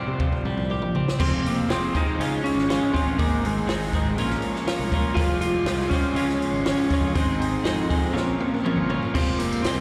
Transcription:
Already playing: clean electric guitar C3 G3 C4 G4, overdriven electric guitar F3 G3 C4 F4
0.08 picked electric bass C3
0.20 clean electric guitar F3, kick, floor tom
0.32 floor tom
0.44 picked electric bass C2, clean electric guitar G3, floor tom
0.57 floor tom
0.70 clean electric guitar G4, high tom
0.82 picked electric bass A#1, mid tom
0.95 clean electric guitar C4, mid tom
1.08 snare
1.19 picked electric bass F1, clean electric guitar F2 C3 F3 G#3 C4 G4, string machine G#3 F5 G5 C6, lead electric guitar C4, overdriven electric guitar F4, kick, crash
1.46 lead electric guitar A#3, open hi-hat
1.68 picked electric bass F1, clean electric guitar F2 C3 F3 G#3 C4 G4, lead electric guitar C4, overdriven electric guitar F4 G#4, snare, open hi-hat
1.93 clean electric guitar F2 C3 F3 G#3 C4 G4, lead electric guitar D#4, overdriven electric guitar F4 G#4, kick, open hi-hat
2.19 picked electric bass C#2, clean electric guitar C#3 F3 G#3 C#4 F4, overdriven electric guitar G#4, string machine C#5 C#6, open hi-hat
2.44 lead electric guitar C#4, open hi-hat
2.55 picked electric bass G#1, snare
2.68 clean electric guitar C#3 F3 G#3 C#4 F4, overdriven electric guitar G#4, snare, open hi-hat
2.92 clean electric guitar C#3 F3 G#3 C#4 F4, lead electric guitar C4, overdriven electric guitar G#4, kick, open hi-hat
3.06 picked electric bass A1
3.17 picked electric bass G#1, clean electric guitar G#2 D#3 G#3 C4 D#4 G#4, lead electric guitar A#3, string machine C5 D#5 C6, kick, open hi-hat
3.45 lead electric guitar G#3, open hi-hat
3.67 picked electric bass G#1, clean electric guitar G#2 D#3 G#3 C4 D#4 G#4, snare, open hi-hat
3.81 snare
3.92 clean electric guitar G#2 D#3 G#3 C4 D#4 G#4, kick, open hi-hat
4.16 picked electric bass A#1, clean electric guitar A#2 F3 A#3 C#4 F4 A#4, string machine A#4 C#5 F5 C#6, open hi-hat
4.30 snare
4.42 open hi-hat
4.56 snare
4.66 clean electric guitar A#2 F3 A#3 C#4 F4 A#4, snare, open hi-hat
4.79 picked electric bass C2
4.91 clean electric guitar A#2 F3 A#3 C#4 F4 A#4, kick, open hi-hat
5.13 picked electric bass F1, overdriven electric guitar F2 C3, clean electric guitar F3 G#3, lead electric guitar F4, string machine G5 G#5 C6, kick, open hi-hat
5.17 clean electric guitar G3 F4 C5, overdriven electric guitar C4
5.41 lead electric guitar F4, open hi-hat
5.65 picked electric bass C2, overdriven electric guitar F2 C3 C4, clean electric guitar F3 G3 G#3 F4 C5, snare, open hi-hat
5.80 snare
5.90 overdriven electric guitar F2 C3 C4, clean electric guitar F3 G3 G#3 F4 C5, lead electric guitar C#4, kick, open hi-hat
6.14 picked electric bass C#2, clean electric guitar C#3 F3 G#3 C#4 F4 C#5, string machine C#5 C#6, open hi-hat
6.29 snare
6.42 open hi-hat
6.52 picked electric bass G#1
6.64 clean electric guitar C#3 F3 G#3 C#4 F4 C#5, snare, open hi-hat
6.91 clean electric guitar C#3 F3 G#3 C#4 F4 C#5, kick, open hi-hat
7.01 picked electric bass F2
7.15 picked electric bass G#1, overdriven electric guitar G#2 D#3 C4, clean electric guitar G#3 D#4 G#4 C5, lead electric guitar C4, string machine C5 D#5 C6, kick, open hi-hat
7.40 lead electric guitar C4, open hi-hat
7.64 picked electric bass F2, overdriven electric guitar G#2 D#3 C4, clean electric guitar G#3 D#4 G#4 C5, snare, open hi-hat
7.88 overdriven electric guitar G#2 D#3 C4, clean electric guitar G#3 D#4 G#4 C5, kick, open hi-hat
8.12 picked electric bass A#1, clean electric guitar A#2 F3 A#3 C#4 F4 C#5
8.16 string machine A#4 F5 C#6, snare
8.40 high tom
8.54 high tom
8.63 clean electric guitar A#2 F3 A#3 C#4 F4 C#5, mid tom
8.76 picked electric bass G1
8.89 clean electric guitar A#2 F3 A#3 C#4 F4 C#5, floor tom
9.02 floor tom
9.14 picked electric bass F1, overdriven electric guitar F2 C3 C4, clean electric guitar F3 G3 G#3 F4 C5, lead electric guitar C4, string machine G5 G#5, kick, tambourine, crash
9.18 string machine C6
9.28 tambourine
9.39 lead electric guitar A#3, open hi-hat
9.53 tambourine
9.62 picked electric bass C2, overdriven electric guitar F2 C3, clean electric guitar F3 G3 G#3 F4, lead electric guitar C4, snare, open hi-hat, tambourine
9.66 overdriven electric guitar C4, clean electric guitar C5

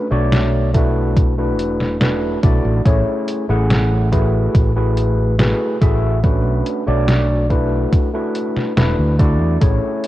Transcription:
0.11 fretless electric bass B1, tine electric piano A3 D4 F#4 C#5 D5
0.32 snare, closed hi-hat
0.74 tine electric piano A3 D4 E4 F#4 B4, kick, closed hi-hat
1.17 kick, closed hi-hat
1.38 tine electric piano A3 D4 E4 F#4 B4
1.59 fretless electric bass E1, closed hi-hat
1.80 snare
2.00 tine electric piano A3 D4 E4 F#4 B4, snare, closed hi-hat
2.43 fretless electric bass B1, tine electric piano A3 D4 E4 F#4 D5, kick, closed hi-hat
2.65 fretless electric bass A1
2.85 fretless electric bass A1, tine electric piano A3 C#4 E4 G#4 C#5, kick, closed hi-hat
3.28 closed hi-hat
3.49 fretless electric bass A1, tine electric piano A3 C#4 E4 G#4 F#5
3.70 snare, closed hi-hat
4.11 tine electric piano A3 E4 F#4 G#4 B4, kick, closed hi-hat
4.55 fretless electric bass A1, kick, closed hi-hat
4.75 tine electric piano A3 E4 F#4 G#4 B4
4.97 closed hi-hat
5.38 tine electric piano A3 E4 F#4 G#4 B4, snare, closed hi-hat
5.81 fretless electric bass A1, tine electric piano A3 E4 F#4 G#4 E5, kick, closed hi-hat
6.23 tine electric piano A3 C#4 D4 F#4 B4, kick, closed hi-hat
6.45 fretless electric bass B1
6.66 closed hi-hat
6.87 fretless electric bass B1, tine electric piano A3 D4 F#4 C#5 D5
7.08 snare, closed hi-hat
7.50 tine electric piano A3 D4 E4 F#4 B4, kick, closed hi-hat
7.93 kick, closed hi-hat
8.13 tine electric piano A3 D4 E4 F#4 B4
8.35 closed hi-hat
8.56 muted fretless electric bass stroke, snare
8.76 fretless electric bass E1, tine electric piano A3 D4 E4 F#4 B4, snare, closed hi-hat
8.99 fretless electric bass D2
9.19 tine electric piano A3 D4 E4 F#4 D5, kick, closed hi-hat
9.41 fretless electric bass E2
9.61 fretless electric bass A1, tine electric piano A3 C#4 E4 G#4 C#5, kick, closed hi-hat
10.04 closed hi-hat

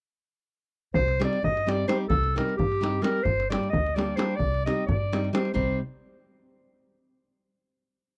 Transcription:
0.94 upright bass C2, clarinet C5, davul low
1.08 davul high
1.20 nylon-string guitar G3 C4 D#4 G4, davul high
1.24 clarinet D5
1.33 davul high
1.43 upright bass G2, clarinet D#5, davul low
1.57 davul high
1.66 nylon-string guitar G3 C4 D#4 G4, clarinet D5, davul high
1.88 nylon-string guitar G3 C4 D#4 G4, clarinet C5, davul high
2.09 upright bass C2, clarinet A4, davul low
2.24 davul high
2.36 nylon-string guitar G3 C4 D#4 G4, clarinet A#4, davul high
2.49 davul high
2.57 upright bass G2, clarinet G4, davul low
2.72 davul high
2.81 nylon-string guitar G3 C4 D#4 G4, davul high
3.02 nylon-string guitar G3 C4 D#4 G4, clarinet A#4, davul high
3.23 upright bass G1, clarinet C5, davul low
3.40 davul high
3.50 nylon-string guitar G3 A#3 D4 G4, clarinet D5, davul high
3.63 davul high
3.70 upright bass D2, clarinet D#5, davul low
3.86 davul high
3.95 nylon-string guitar G3 A#3 D4 G4, clarinet D5, davul high
4.16 nylon-string guitar G3 A#3 D4 G4, clarinet C5, davul high
4.36 clarinet D5, davul low
4.40 upright bass C2
4.54 davul high
4.66 nylon-string guitar G3 C4 D#4 G4, clarinet D#5, davul high
4.86 upright bass G2, clarinet D5, davul low
5.12 nylon-string guitar G3 C4 D#4 G4, davul high
5.24 davul high
5.33 nylon-string guitar G3 C4 D#4 G4, clarinet C5, davul high
5.45 davul high
5.54 upright bass C2, nylon-string guitar G3 C4 D#4 G4, clarinet C5, davul low

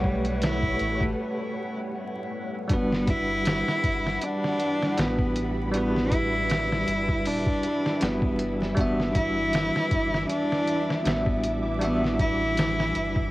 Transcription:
Already playing: sub bass B1, cello G3, string machine G3 A3 B4 C#5 F#5, tine electric piano A3 G4 B4 C#5 F#5, synth drone F#4 F#5
0.04 kick
0.25 closed hi-hat
0.42 cello E4, snare, closed hi-hat
0.63 kick
0.79 sub bass A1, closed hi-hat
1.01 cello A3, kick
2.68 sub bass G1, synth drone E3 E4, tine electric piano G3 D4 F#4, string machine G3 F#5 B5, cello B3, kick, closed hi-hat
2.74 tine electric piano B4
2.92 snare
3.07 cello E4, kick, closed hi-hat
3.45 snare, closed hi-hat
3.68 snare
3.84 sub bass G1, kick, closed hi-hat
4.07 snare
4.22 cello D4, closed hi-hat
4.44 snare
4.60 closed hi-hat
4.82 snare
4.97 sub bass A1, tine electric piano G3 D4 F#4 B4, cello B3, snare, closed hi-hat
5.19 kick
5.36 closed hi-hat
5.72 tine electric piano G3 D4 F#4, string machine E5, closed hi-hat
5.76 cello B3, tine electric piano B4
5.96 snare
6.12 cello E4, kick, closed hi-hat
6.50 snare, closed hi-hat
6.72 snare
6.88 sub bass G1, closed hi-hat
7.08 kick
7.25 sub bass D1, cello D4, open hi-hat
7.46 kick
7.63 closed hi-hat
7.86 snare
8.00 sub bass G1, tine electric piano G3 D4 F#4 B4, cello B3, snare, closed hi-hat
8.22 kick
8.39 closed hi-hat
8.62 snare
8.75 sub bass G1, string machine E3 D6, tine electric piano G3 D4 F#4, cello B3, kick, closed hi-hat
8.81 tine electric piano E5
9.00 snare
9.15 cello E4, kick, closed hi-hat
9.53 snare, closed hi-hat
9.76 snare
9.91 sub bass G1, kick, closed hi-hat
10.14 snare
10.29 cello D4, closed hi-hat
10.52 snare
10.67 closed hi-hat
10.90 snare
11.04 sub bass A1, tine electric piano G3 D4 F#4 E5, cello B3, snare, closed hi-hat
11.26 kick
11.44 closed hi-hat
11.79 tine electric piano G3 D4 F#4, cello B3, closed hi-hat
11.85 tine electric piano E5
12.04 snare
12.19 cello E4, kick, closed hi-hat
12.57 snare, closed hi-hat
12.80 snare
12.95 sub bass G1, closed hi-hat
13.16 kick

